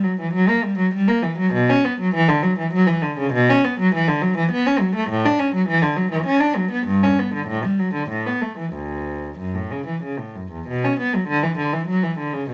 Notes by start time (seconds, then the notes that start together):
0.04 F#3
0.20 E3
0.33 F#3
0.49 A#3
0.64 G3
0.78 F#3
0.94 G3
1.08 A#3
1.23 E3
1.38 F#3
1.53 B2
1.70 C#4
1.85 B3
2.00 F#3
2.14 E3
2.29 D3
2.43 F#3
2.59 E3
2.73 F#3
2.87 E3
3.02 D3
3.18 C#3
3.33 B2
3.50 C#4
3.64 B3
3.80 F#3
3.94 E3
4.08 D3
4.22 F#3
4.37 E3
4.51 B3
4.66 C#4
4.80 F#3
4.95 A3
5.10 A2
5.26 D4
5.39 C#4
5.55 F#3
5.68 E3
5.82 D3
5.97 F#3
6.11 E3
6.26 C#4
6.40 D4
6.56 F#3
6.71 B3
6.87 G2
7.03 C#4
7.19 B3
7.34 D3
7.47 A2
7.64 G3
7.79 F#3
7.94 D3
8.09 A2
8.26 B3
8.42 A3
8.58 E3
8.74 D2
9.38 F#2
9.54 A2
9.71 C#3
9.87 E3
10.03 C#3
10.19 A2
10.35 F#2
10.51 E2
10.68 B2
10.84 C#4
10.99 B3
11.15 F#3
11.28 D3
11.43 E3
11.58 D3
11.73 E3
11.88 F#3
12.03 E3
12.18 D3
12.34 C#3
12.50 B2